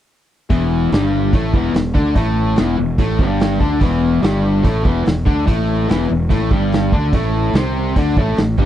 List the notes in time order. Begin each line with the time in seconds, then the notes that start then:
0.50 E1 E2 E3, kick, open hi-hat
0.92 G1 G2 G3, snare, open hi-hat
1.33 A1 A2 A3, kick, open hi-hat
1.54 E1 E2 E3, kick
1.73 E1 E2, snare, open hi-hat
1.94 D2 D3 D4, kick
2.15 A1 A2 A3, kick, open hi-hat
2.56 E1 E2 E3, snare, open hi-hat
2.78 E1 E2
2.98 A1 A2 A3, kick, open hi-hat
3.19 G1 G2 G3, kick
3.40 snare, open hi-hat
3.59 D2 D3 D4, kick
3.80 E1 E2 E3, kick, open hi-hat
4.22 G1 G2 G3, snare, open hi-hat
4.63 A1 A2 A3, kick, open hi-hat
4.83 E1 E2 E3, kick
5.05 E1 E2, snare, open hi-hat
5.26 D2 D3 D4, kick
5.46 A1 A2 A3, kick, open hi-hat
5.88 E1 E2 E3, snare, open hi-hat
6.09 E1 E2
6.30 A1 A2 A3, kick, open hi-hat
6.51 G1 G2 G3, kick
6.72 snare, open hi-hat
6.92 D2 D3 D4, kick
7.13 A1 A2 A3, kick, open hi-hat
7.54 C2 C3 C4, snare, open hi-hat
7.96 D2 D3 D4, kick, open hi-hat
8.17 A1 A2 A3, kick
8.37 A1 A2, snare, open hi-hat
8.58 G1 G2 G3, kick